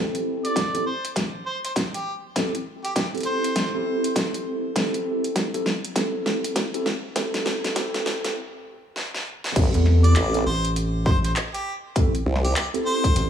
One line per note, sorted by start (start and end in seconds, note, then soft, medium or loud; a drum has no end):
0.00 0.70 C4 medium
0.00 0.70 E4 medium
0.00 0.70 G4 medium
0.00 0.70 A4 loud
0.15 closed hi-hat soft
0.45 0.84 D5 medium
0.45 closed hi-hat soft
0.56 kick medium
0.56 snare soft
0.56 closed hi-hat medium
0.74 0.85 C4 medium
0.74 0.85 E4 medium
0.74 0.85 G4 medium
0.74 0.85 A4 loud
0.74 closed hi-hat soft
0.86 1.10 C5 medium
1.05 closed hi-hat medium
1.16 kick medium
1.16 snare soft
1.16 closed hi-hat medium
1.46 1.58 C5 medium
1.65 1.72 C5 medium
1.65 closed hi-hat medium
1.76 kick loud
1.76 snare medium
1.76 closed hi-hat medium
1.94 2.14 G4 medium
1.94 closed hi-hat soft
2.36 2.52 C4 medium
2.36 2.52 E4 medium
2.36 2.52 G4 medium
2.36 2.52 A4 loud
2.36 kick loud
2.36 snare medium
2.36 closed hi-hat medium
2.55 closed hi-hat soft
2.84 2.92 G4 medium
2.84 closed hi-hat soft
2.96 3.08 G4 medium
2.96 kick medium
2.96 snare medium
2.96 closed hi-hat medium
3.14 3.70 C4 medium
3.14 3.70 E4 medium
3.14 3.70 G4 medium
3.14 3.70 A4 medium
3.14 closed hi-hat soft
3.17 closed hi-hat soft
3.21 closed hi-hat soft
3.23 3.74 C5 medium
3.23 closed hi-hat soft
3.44 closed hi-hat medium
3.56 kick loud
3.56 snare medium
3.56 closed hi-hat medium
3.74 4.73 C4 medium
3.74 4.73 E4 medium
3.74 4.73 G4 medium
3.74 4.73 A4 loud
4.04 closed hi-hat medium
4.16 kick loud
4.16 snare medium
4.16 closed hi-hat medium
4.34 closed hi-hat soft
4.76 5.50 C4 medium
4.76 5.50 E4 medium
4.76 5.50 G4 medium
4.76 5.50 A4 medium
4.76 kick loud
4.76 snare medium
4.76 closed hi-hat medium
4.94 closed hi-hat soft
5.24 closed hi-hat soft
5.36 kick loud
5.36 snare medium
5.36 closed hi-hat medium
5.54 5.65 C4 medium
5.54 5.65 E4 medium
5.54 5.64 G4 medium
5.54 5.64 A4 medium
5.54 closed hi-hat soft
5.66 snare medium
5.85 closed hi-hat medium
5.96 6.70 C4 medium
5.96 6.70 E4 medium
5.96 6.70 G4 medium
5.96 6.70 A4 medium
5.96 kick loud
5.96 snare medium
5.96 closed hi-hat medium
6.26 snare medium
6.44 closed hi-hat medium
6.56 kick loud
6.56 snare medium
6.56 closed hi-hat medium
6.74 6.84 C4 medium
6.74 6.85 E4 medium
6.74 6.84 G4 medium
6.74 6.84 A4 loud
6.74 closed hi-hat soft
6.86 snare medium
7.16 7.74 C4 medium
7.16 7.74 E4 medium
7.16 7.74 G4 medium
7.16 7.74 A4 loud
7.16 kick loud
7.16 snare medium
7.16 closed hi-hat medium
7.34 snare medium
7.34 closed hi-hat soft
7.46 snare loud
7.64 snare medium
7.64 closed hi-hat soft
7.76 8.34 C4 medium
7.76 8.34 E4 medium
7.76 8.34 G4 medium
7.76 8.34 A4 loud
7.76 kick medium
7.76 snare loud
7.76 closed hi-hat medium
7.94 snare medium
7.94 closed hi-hat soft
8.06 snare loud
8.24 snare medium
8.24 closed hi-hat medium
8.96 snare medium
9.14 snare medium
9.44 snare medium
9.56 9.72 A1 loud
9.56 10.30 C4 medium
9.56 10.30 E4 medium
9.56 10.30 G4 medium
9.56 10.30 A4 loud
9.56 kick loud
9.56 closed hi-hat medium
9.56 crash loud
9.74 10.14 E2 loud
9.74 closed hi-hat soft
9.86 snare soft
10.04 10.44 D5 loud
10.04 closed hi-hat soft
10.16 10.44 A1 loud
10.16 clap loud
10.16 closed hi-hat medium
10.34 10.45 C4 medium
10.34 10.45 E4 medium
10.34 10.45 G4 medium
10.34 10.45 A4 loud
10.34 closed hi-hat soft
10.46 11.34 A1 loud
10.46 10.70 C5 medium
10.65 closed hi-hat medium
10.76 closed hi-hat medium
11.06 11.18 C5 medium
11.06 kick loud
11.24 11.32 C5 medium
11.24 closed hi-hat medium
11.36 clap loud
11.36 closed hi-hat medium
11.54 11.74 G4 medium
11.54 closed hi-hat soft
11.96 12.12 C4 medium
11.96 12.12 E4 medium
11.96 12.12 G4 medium
11.96 12.12 A4 loud
11.96 kick loud
11.96 closed hi-hat medium
12.15 closed hi-hat soft
12.26 12.54 C2 loud
12.36 snare soft
12.44 12.52 G4 medium
12.44 closed hi-hat soft
12.56 12.68 G4 medium
12.56 clap loud
12.56 closed hi-hat medium
12.74 13.30 C4 medium
12.74 13.30 E4 medium
12.74 13.30 G4 medium
12.74 13.30 A4 medium
12.74 closed hi-hat soft
12.86 13.30 C5 loud
13.04 kick medium
13.04 closed hi-hat medium
13.16 13.30 A1 loud
13.16 closed hi-hat medium